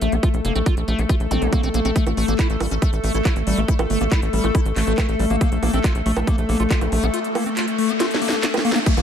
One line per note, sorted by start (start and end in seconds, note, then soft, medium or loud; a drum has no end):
0.00 0.08 A#1 loud
0.00 8.87 A3 medium
0.00 0.14 A3 medium
0.00 8.87 A4 medium
0.00 closed hi-hat medium
0.12 0.19 A#1 medium
0.12 0.16 C4 medium
0.12 closed hi-hat soft
0.23 0.29 F4 medium
0.23 kick loud
0.23 closed hi-hat medium
0.34 0.41 A#1 medium
0.34 closed hi-hat soft
0.45 0.51 F1 loud
0.45 0.54 A#3 medium
0.45 closed hi-hat medium
0.55 0.62 A#1 medium
0.55 0.59 C4 medium
0.55 closed hi-hat soft
0.66 0.75 F4 medium
0.66 kick loud
0.66 closed hi-hat medium
0.77 0.84 A#1 medium
0.77 closed hi-hat soft
0.88 0.95 A#1 loud
0.88 1.00 A3 medium
0.88 closed hi-hat soft
0.99 1.05 A#1 medium
0.99 1.02 C4 medium
0.99 closed hi-hat soft
1.09 1.15 F4 medium
1.09 kick loud
1.09 closed hi-hat medium
1.20 1.27 A#1 medium
1.20 closed hi-hat soft
1.31 1.38 A#1 loud
1.31 1.43 C4 medium
1.31 closed hi-hat medium
1.31 zap medium
1.42 1.49 A#1 medium
1.42 1.48 A#3 medium
1.42 closed hi-hat soft
1.53 1.61 A#3 medium
1.53 kick loud
1.53 closed hi-hat medium
1.63 1.70 A#1 medium
1.63 1.69 C4 medium
1.63 closed hi-hat soft
1.74 1.81 A#1 loud
1.74 1.80 A#3 medium
1.74 closed hi-hat medium
1.85 1.92 A#1 medium
1.85 1.91 C4 medium
1.85 closed hi-hat soft
1.96 2.05 A3 medium
1.96 kick loud
1.96 closed hi-hat medium
2.07 2.13 A1 medium
2.07 closed hi-hat soft
2.07 high bongo soft
2.17 2.24 A1 medium
2.17 2.26 A3 medium
2.17 open hi-hat loud
2.28 2.35 A1 medium
2.28 2.34 A#3 medium
2.28 closed hi-hat soft
2.39 2.48 E4 medium
2.39 kick loud
2.39 clap loud
2.39 closed hi-hat medium
2.50 2.57 A1 medium
2.50 closed hi-hat soft
2.60 2.67 A1 loud
2.60 2.66 G3 medium
2.60 open hi-hat loud
2.60 high bongo medium
2.71 2.78 A1 medium
2.71 2.75 C#4 medium
2.71 closed hi-hat soft
2.82 2.91 A3 medium
2.82 kick loud
2.82 closed hi-hat medium
2.93 3.00 A1 medium
2.93 closed hi-hat soft
3.04 3.10 A1 loud
3.04 3.13 A3 medium
3.04 open hi-hat loud
3.14 3.21 A1 medium
3.14 3.18 E4 medium
3.14 closed hi-hat soft
3.25 3.34 E4 medium
3.25 kick loud
3.25 clap loud
3.25 closed hi-hat medium
3.25 high bongo soft
3.36 3.43 A1 medium
3.36 closed hi-hat soft
3.47 3.54 A1 loud
3.47 3.59 G3 medium
3.47 open hi-hat loud
3.58 3.64 A1 medium
3.58 3.61 A#3 medium
3.58 closed hi-hat soft
3.68 3.74 E4 medium
3.68 kick loud
3.68 closed hi-hat medium
3.79 3.86 A1 medium
3.79 closed hi-hat soft
3.79 high bongo medium
3.90 3.97 G1 loud
3.90 3.99 A3 medium
3.90 open hi-hat medium
4.01 4.08 A1 medium
4.01 4.04 A#3 medium
4.01 closed hi-hat soft
4.12 4.20 E4 medium
4.12 kick loud
4.12 clap loud
4.12 closed hi-hat medium
4.22 4.29 A1 medium
4.22 closed hi-hat soft
4.33 4.40 A1 loud
4.33 4.45 G3 medium
4.33 open hi-hat loud
4.44 4.51 A1 medium
4.44 4.47 A#3 medium
4.44 closed hi-hat soft
4.44 high bongo soft
4.55 4.61 E4 medium
4.55 kick loud
4.55 closed hi-hat medium
4.65 4.72 A1 medium
4.65 closed hi-hat soft
4.76 4.83 A1 loud
4.76 4.85 A3 medium
4.76 clap medium
4.76 open hi-hat loud
4.87 4.94 A1 loud
4.87 4.93 A3 medium
4.87 closed hi-hat soft
4.98 5.07 A3 medium
4.98 kick loud
4.98 clap loud
4.98 closed hi-hat medium
4.98 high bongo medium
5.09 5.15 A1 medium
5.09 closed hi-hat soft
5.19 5.26 A1 loud
5.19 5.25 G3 medium
5.19 open hi-hat loud
5.30 5.37 A1 medium
5.30 5.36 A#3 medium
5.30 closed hi-hat soft
5.41 5.50 A#3 medium
5.41 kick loud
5.41 closed hi-hat loud
5.41 riser medium
5.52 5.59 A#1 medium
5.52 closed hi-hat soft
5.63 5.69 A#1 medium
5.63 5.72 A#3 medium
5.63 open hi-hat medium
5.63 high bongo soft
5.73 5.80 A#1 medium
5.73 5.79 C4 medium
5.73 closed hi-hat soft
5.84 5.93 F4 medium
5.84 kick loud
5.84 clap loud
5.84 closed hi-hat medium
5.95 6.02 A#1 medium
5.95 closed hi-hat soft
6.06 6.13 A#1 loud
6.06 6.12 A3 medium
6.06 open hi-hat loud
6.17 6.23 A#1 medium
6.17 6.20 D4 medium
6.17 closed hi-hat soft
6.17 high bongo medium
6.27 6.36 A#3 medium
6.27 kick loud
6.27 closed hi-hat loud
6.38 6.45 A#1 medium
6.38 closed hi-hat soft
6.49 6.56 A#1 loud
6.49 6.58 A#3 medium
6.49 open hi-hat loud
6.60 6.67 A#1 medium
6.60 6.63 F4 medium
6.60 closed hi-hat soft
6.71 6.79 F4 medium
6.71 kick loud
6.71 clap loud
6.71 closed hi-hat loud
6.81 6.88 A#1 medium
6.81 closed hi-hat soft
6.81 high bongo soft
6.92 6.99 A#1 loud
6.92 7.04 A3 medium
6.92 open hi-hat loud
7.03 7.10 A#1 medium
7.03 7.06 C4 medium
7.03 closed hi-hat soft
7.14 7.20 F4 medium
7.14 closed hi-hat loud
7.24 closed hi-hat soft
7.35 7.44 A#3 medium
7.35 open hi-hat loud
7.35 high bongo medium
7.46 7.50 C4 medium
7.46 closed hi-hat soft
7.57 7.66 F4 medium
7.57 clap loud
7.57 closed hi-hat loud
7.68 closed hi-hat soft
7.78 7.91 A3 medium
7.78 open hi-hat loud
7.89 7.93 C4 medium
7.89 closed hi-hat soft
8.00 8.06 F4 medium
8.00 snare medium
8.00 closed hi-hat medium
8.00 high bongo soft
8.11 snare medium
8.11 closed hi-hat soft
8.22 8.28 A#3 medium
8.22 open hi-hat loud
8.29 8.36 A#3 medium
8.29 snare medium
8.29 closed hi-hat soft
8.43 8.47 A#3 medium
8.43 snare medium
8.43 clap loud
8.43 closed hi-hat loud
8.54 snare loud
8.54 closed hi-hat soft
8.54 high bongo medium
8.65 8.71 A#3 loud
8.65 open hi-hat loud
8.72 8.79 A#3 loud
8.72 snare loud
8.72 closed hi-hat soft
8.86 9.02 E3 medium
8.86 8.95 A3 medium
8.86 9.02 E4 medium
8.86 kick loud
8.86 closed hi-hat loud
8.86 crash loud
8.86 downlifter medium
8.97 9.02 A1 medium
8.97 closed hi-hat soft
8.97 high bongo soft